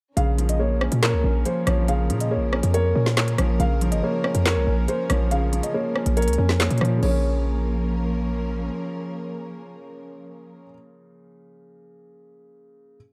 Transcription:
0.17 0.89 A#1 loud
0.17 1.24 C#3 medium
0.17 3.56 F3 medium
0.17 6.99 A#3 medium
0.17 6.99 C#4 medium
0.17 6.99 A#4 medium
0.17 0.47 F5 loud
0.17 closed hi-hat medium
0.38 1.45 F3 medium
0.38 closed hi-hat medium
0.49 0.59 D#5 medium
0.49 closed hi-hat medium
0.59 1.44 A#3 medium
0.59 1.00 C#5 medium
0.81 1.23 C#4 medium
0.81 cross-stick loud
0.92 1.15 A#2 loud
0.92 closed hi-hat medium
1.03 1.43 A#4 medium
1.03 2.10 C#5 loud
1.03 snare loud
1.03 clap medium
1.03 closed hi-hat medium
1.13 1.24 C#2 loud
1.24 1.45 A#1 loud
1.24 2.31 C#4 medium
1.45 2.29 A#3 medium
1.45 1.65 C5 medium
1.45 closed hi-hat medium
1.67 2.11 A#1 loud
1.67 2.08 F3 medium
1.67 1.86 C#5 medium
1.67 cross-stick loud
1.67 closed hi-hat medium
1.88 2.95 C#3 loud
1.88 2.19 F5 loud
1.88 closed hi-hat medium
2.10 2.38 A#2 loud
2.10 3.17 F3 medium
2.10 closed hi-hat medium
2.20 2.30 D#5 medium
2.20 closed hi-hat medium
2.31 3.15 A#3 medium
2.31 2.71 C#5 medium
2.37 2.62 A#1 loud
2.53 2.94 C#4 medium
2.53 cross-stick loud
2.63 2.94 F2 loud
2.63 closed hi-hat medium
2.74 3.14 A#4 medium
2.74 3.60 C#5 loud
2.74 closed hi-hat medium
2.95 3.37 A#2 loud
2.95 3.60 C#4 medium
3.06 snare medium
3.17 3.60 A#3 medium
3.17 3.57 C#5 medium
3.17 snare loud
3.17 clap medium
3.17 closed hi-hat medium
3.28 closed hi-hat medium
3.38 3.59 A#1 loud
3.38 3.60 F3 medium
3.38 cross-stick loud
3.38 closed hi-hat medium
3.60 3.93 A#1 loud
3.60 4.67 C#3 loud
3.60 6.99 F3 medium
3.60 3.90 F5 loud
3.60 closed hi-hat medium
3.81 4.89 F3 medium
3.81 closed hi-hat medium
3.92 4.02 G#1 loud
3.92 4.01 D#5 medium
3.92 closed hi-hat medium
4.03 4.87 A#3 medium
4.03 4.43 C#5 medium
4.24 4.65 C#4 medium
4.24 cross-stick loud
4.35 4.58 F2 loud
4.35 closed hi-hat medium
4.45 4.86 A#4 loud
4.45 5.53 C#5 loud
4.45 snare loud
4.45 clap medium
4.45 closed hi-hat medium
4.56 4.66 C2 loud
4.66 4.88 A#1 loud
4.66 5.74 C#4 medium
4.88 5.73 A#3 medium
4.88 5.07 C5 loud
4.88 closed hi-hat medium
5.10 5.61 A#1 loud
5.10 5.51 F3 medium
5.10 5.29 C#5 medium
5.10 cross-stick loud
5.10 closed hi-hat medium
5.31 6.38 C#3 medium
5.31 5.61 F5 loud
5.31 closed hi-hat medium
5.52 6.60 F3 medium
5.52 closed hi-hat medium
5.63 5.73 D#5 medium
5.63 closed hi-hat medium
5.74 6.58 A#3 loud
5.74 6.14 C#5 medium
5.95 6.37 C#4 loud
5.95 cross-stick medium
6.06 6.29 A#1 loud
6.06 closed hi-hat medium
6.17 6.57 A#4 medium
6.17 7.03 C#5 loud
6.17 closed hi-hat medium
6.22 closed hi-hat medium
6.28 6.38 C#2 loud
6.28 closed hi-hat medium
6.33 closed hi-hat medium
6.38 6.69 F2 loud
6.38 7.02 C#4 medium
6.49 snare medium
6.59 7.02 A#3 medium
6.59 7.00 C#5 medium
6.59 snare loud
6.59 clap medium
6.59 closed hi-hat medium
6.71 6.81 A#2 loud
6.71 closed hi-hat medium
6.78 7.02 A#2 loud
6.78 6.99 F3 medium
6.78 cross-stick loud
6.78 closed hi-hat medium
6.85 closed hi-hat soft
6.97 10.62 C#3 medium
7.01 8.70 A#1 loud
7.01 10.66 F3 medium
7.01 10.68 F3 medium
7.01 10.68 A#3 medium
7.01 10.68 C#4 medium
7.01 10.68 A#4 medium
7.01 8.27 C#5 medium
7.01 crash medium
7.05 10.70 A#3 medium
7.05 10.74 C#4 medium

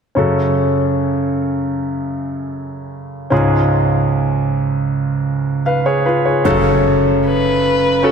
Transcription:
0.15 3.27 F#2 soft
0.15 3.27 C#3 soft
0.15 3.27 C#4 soft
0.15 3.27 F#4 soft
0.15 3.28 A4 soft
3.30 6.42 C#2 soft
3.30 6.42 G#2 soft
3.30 6.41 C#4 soft
3.30 5.62 F4 soft
3.30 5.63 G#4 soft
5.66 5.85 B4 soft
5.66 5.85 F5 soft
5.86 6.05 G#4 soft
5.86 6.05 C#5 soft
6.06 6.25 F4 soft
6.06 6.25 B4 soft
6.26 6.64 G#4 soft
6.26 6.63 C#5 soft
6.44 8.12 F#2 soft
6.44 8.12 C#3 soft
6.44 7.96 C#4 medium
6.44 7.96 F#4 medium
6.44 7.96 A4 medium
6.44 impact medium
7.26 8.07 B4 medium
8.03 8.12 C#4 medium
8.03 8.12 F#4 soft
8.03 8.12 A4 soft
8.03 8.12 A4 medium

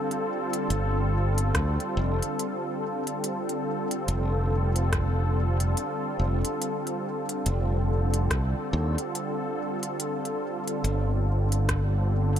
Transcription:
0.00 12.40 D3 medium
0.00 12.40 G3 medium
0.00 12.40 C4 medium
0.00 12.40 F4 medium
0.00 12.40 A4 medium
0.11 closed hi-hat soft
0.53 closed hi-hat soft
0.70 1.51 G1 loud
0.70 closed hi-hat medium
1.38 closed hi-hat soft
1.55 1.77 D2 medium
1.55 kick loud
1.55 cross-stick medium
1.55 closed hi-hat medium
1.80 closed hi-hat soft
1.97 2.19 F1 loud
2.22 closed hi-hat soft
2.39 closed hi-hat medium
3.07 closed hi-hat soft
3.24 closed hi-hat soft
3.49 closed hi-hat soft
3.91 closed hi-hat soft
4.08 5.74 F1 loud
4.08 closed hi-hat soft
4.76 closed hi-hat soft
4.93 kick loud
4.93 cross-stick medium
4.93 closed hi-hat soft
5.60 closed hi-hat soft
5.77 closed hi-hat soft
6.19 6.42 F1 medium
6.45 closed hi-hat soft
6.62 closed hi-hat medium
6.87 closed hi-hat soft
7.29 closed hi-hat soft
7.46 8.27 F1 loud
7.46 closed hi-hat medium
8.14 closed hi-hat soft
8.30 8.53 C2 medium
8.30 kick loud
8.30 cross-stick medium
8.30 closed hi-hat soft
8.73 8.95 D#2 loud
8.98 closed hi-hat soft
9.15 closed hi-hat soft
9.83 closed hi-hat soft
10.00 closed hi-hat medium
10.25 closed hi-hat soft
10.68 closed hi-hat soft
10.84 12.40 G1 loud
10.84 closed hi-hat medium
11.52 closed hi-hat soft
11.69 kick loud
11.69 cross-stick medium
11.69 closed hi-hat medium
12.36 closed hi-hat soft

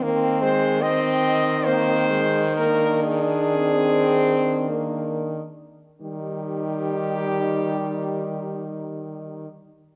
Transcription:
0.03 5.43 D#3 loud
0.03 0.43 A#3 loud
0.03 0.81 C4 loud
0.42 0.83 G#3 loud
0.42 0.83 C5 loud
0.81 1.68 C4 loud
0.81 1.66 C4 loud
0.81 1.67 D#5 loud
1.65 2.12 A#3 loud
1.65 2.24 C4 loud
1.65 2.56 C5 loud
2.10 2.43 G#3 loud
2.57 3.18 A#3 loud
2.57 5.43 D4 loud
2.57 3.03 A#4 loud
3.03 5.29 G#4 loud
3.55 4.70 C4 loud
4.68 5.34 A#3 medium
6.01 9.47 D#3 medium
6.01 9.47 G3 medium
6.01 9.47 D#4 medium
6.01 9.47 G4 loud

